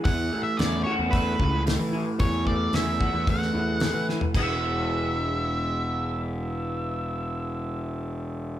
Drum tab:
CC |----------------|----------------|x---------------|----------------|
HH |o---o---o---o---|o---o---o---o---|----------------|----------------|
SD |----o-------o---|----o----o--o-o-|----------------|----------------|
FT |----------------|---------------o|----------------|----------------|
BD |o-------o-o-----|o-o---o-o-------|o---------------|----------------|